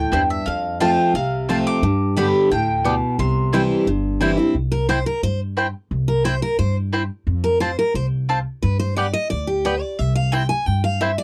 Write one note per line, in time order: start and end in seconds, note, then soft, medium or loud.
0.00 0.11 A2 medium
0.00 0.28 G5 loud
0.12 0.41 E2 medium
0.12 0.45 G2 medium
0.12 0.21 C4 loud
0.12 0.21 E4 medium
0.12 0.22 C5 medium
0.12 0.22 G5 loud
0.30 0.46 E5 medium
0.46 0.96 F2 medium
0.46 1.12 F2 medium
0.46 0.80 F5 medium
0.80 1.13 F3 medium
0.80 1.13 A3 loud
0.80 0.89 C4 medium
0.80 1.13 C4 medium
0.80 0.90 F4 loud
0.80 1.14 F4 loud
0.80 0.90 C5 medium
0.80 1.12 G5 medium
0.80 0.90 A5 loud
1.14 1.63 C2 medium
1.14 1.79 C3 medium
1.14 1.68 F5 medium
1.49 1.81 F3 medium
1.49 1.81 A3 medium
1.49 1.58 C4 medium
1.49 1.82 C4 medium
1.49 1.58 F4 loud
1.49 1.82 F4 medium
1.49 1.58 C5 medium
1.49 1.58 A5 loud
1.67 2.17 D6 loud
1.82 2.31 G2 loud
1.82 2.48 G2 medium
2.17 2.49 D3 loud
2.17 2.49 G3 medium
2.17 2.26 B3 loud
2.17 2.50 B3 medium
2.17 2.26 G4 loud
2.17 2.50 G4 medium
2.17 2.26 D5 loud
2.17 2.26 G5 loud
2.17 2.51 B5 loud
2.51 3.00 D2 medium
2.51 2.83 A2 medium
2.51 3.15 G5 medium
2.84 3.17 B2 medium
2.84 2.94 B3 loud
2.84 2.94 G4 loud
2.84 2.94 D5 loud
2.84 2.94 G5 loud
3.18 3.67 C2 medium
3.18 3.84 C3 medium
3.18 4.34 C6 medium
3.53 3.85 E3 medium
3.53 3.86 G3 medium
3.53 3.62 C4 medium
3.53 3.86 C4 medium
3.53 3.62 E4 medium
3.53 3.86 E4 loud
3.53 3.62 C5 loud
3.53 3.62 G5 medium
3.87 4.36 G1 medium
3.87 4.52 G2 medium
4.21 4.37 E3 medium
4.21 4.38 G3 medium
4.21 4.30 C4 medium
4.21 4.38 C4 medium
4.21 4.30 E4 medium
4.21 4.36 E4 medium
4.21 4.30 C5 loud
4.21 4.30 G5 loud
4.38 4.55 C4 soft
4.38 4.54 E4 medium
4.55 5.04 C2 medium
4.72 4.88 A#4 medium
4.89 4.98 C4 medium
4.89 4.98 E4 medium
4.89 5.05 C5 medium
4.89 4.98 C5 loud
4.89 4.98 G5 loud
5.06 5.23 A#4 medium
5.23 5.72 G2 medium
5.23 5.40 C5 medium
5.57 5.66 C4 medium
5.57 5.66 E4 medium
5.57 5.66 C5 loud
5.57 5.66 G5 loud
5.91 6.40 C2 medium
6.08 6.24 A#4 medium
6.24 6.34 C4 medium
6.24 6.34 E4 medium
6.24 6.42 C5 loud
6.24 6.34 C5 medium
6.24 6.34 G5 loud
6.42 6.58 A#4 loud
6.59 7.08 G2 medium
6.59 6.75 C5 loud
6.93 7.02 C4 medium
6.93 7.02 E4 medium
6.93 7.02 C5 loud
6.93 7.02 G5 loud
7.27 7.76 F2 loud
7.44 7.60 A#4 medium
7.60 7.70 C4 medium
7.60 7.70 F4 loud
7.60 7.77 C5 loud
7.60 7.70 C5 loud
7.60 7.70 A5 loud
7.79 7.95 A#4 medium
7.94 8.43 C2 medium
7.94 8.05 C5 medium
8.29 8.38 C4 loud
8.29 8.38 F4 medium
8.29 8.38 C5 loud
8.29 8.38 A5 loud
8.62 9.12 G2 loud
8.62 8.79 B4 medium
8.79 8.96 C5 medium
8.96 9.06 B3 medium
8.96 9.06 G4 medium
8.96 9.13 D5 medium
8.96 9.06 D5 loud
8.96 9.06 G5 loud
9.13 9.30 D#5 loud
9.30 9.80 D2 medium
9.30 9.47 D5 medium
9.47 9.64 G4 medium
9.65 9.74 B3 medium
9.65 9.74 G4 loud
9.65 9.81 B4 medium
9.65 9.74 D5 loud
9.65 9.74 G5 loud
9.81 9.99 D5 loud
9.99 10.48 C2 medium
9.99 10.15 E5 medium
10.15 10.32 F5 medium
10.32 10.42 C4 medium
10.32 10.42 E4 loud
10.32 10.42 C5 loud
10.32 10.49 G5 medium
10.32 10.42 G5 medium
10.49 10.66 G#5 loud
10.66 11.16 G2 medium
10.66 10.83 G5 medium
10.84 11.00 F5 medium
11.01 11.10 C4 medium
11.01 11.10 E4 medium
11.01 11.10 C5 loud
11.01 11.17 E5 medium
11.01 11.10 G5 medium
11.18 11.23 D5 medium